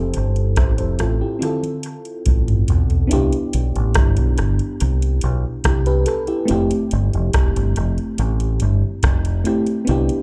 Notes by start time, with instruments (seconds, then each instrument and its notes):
Already playing: fingered electric bass F1, fm electric piano C4 E4 G4 A4 C5
0.14 fingered electric bass G1, closed hi-hat
0.36 closed hi-hat
0.56 fingered electric bass A1, fm electric piano C5 E5, kick, cross-stick, closed hi-hat
0.78 fingered electric bass F1, fm electric piano A4 C5, closed hi-hat
0.99 fingered electric bass A1, fm electric piano F4 A4, cross-stick, closed hi-hat
1.21 fm electric piano E4 G4
1.39 fm electric piano C4 E4 F4, closed hi-hat, high tom
1.45 fm electric piano A4
1.63 closed hi-hat, high tom
1.83 closed hi-hat
2.05 closed hi-hat
2.26 fingered electric bass A1, kick, closed hi-hat
2.48 closed hi-hat, mid tom
2.68 fingered electric bass B1, closed hi-hat, floor tom
2.90 closed hi-hat, floor tom
3.07 fm electric piano B3 D4 E4, closed hi-hat
3.12 fingered electric bass C2, fm electric piano G4
3.33 closed hi-hat
3.53 fingered electric bass B1, closed hi-hat
3.76 fingered electric bass A1, closed hi-hat
3.94 fingered electric bass G1, kick, cross-stick, closed hi-hat
4.17 fingered electric bass B1, closed hi-hat
4.38 fingered electric bass G1, cross-stick, closed hi-hat
4.59 closed hi-hat
4.80 fingered electric bass C2, closed hi-hat
5.02 closed hi-hat
5.21 fingered electric bass B1, closed hi-hat
5.64 fingered electric bass C2, fm electric piano E4 G4, kick, cross-stick, closed hi-hat
5.86 fm electric piano G4 B4, closed hi-hat
6.06 fm electric piano A4, closed hi-hat
6.27 fm electric piano E4 G4, closed hi-hat
6.45 fm electric piano A3 C4 E4, closed hi-hat
6.51 fingered electric bass F1, fm electric piano G4
6.71 closed hi-hat
6.91 fingered electric bass G1, closed hi-hat
7.13 fingered electric bass F1, closed hi-hat
7.33 fingered electric bass E1, kick, cross-stick, closed hi-hat
7.56 fingered electric bass G1, closed hi-hat
7.76 fingered electric bass F1, closed hi-hat
7.98 closed hi-hat
8.18 fingered electric bass A1, closed hi-hat
8.40 closed hi-hat
8.60 fingered electric bass G1, closed hi-hat
9.03 fingered electric bass F1, kick, cross-stick, closed hi-hat
9.25 closed hi-hat
9.44 fm electric piano A3 C4 E4 G4, closed hi-hat
9.66 closed hi-hat
9.85 fm electric piano B3 D4, closed hi-hat
9.89 fingered electric bass C2, fm electric piano E4 G4
10.09 closed hi-hat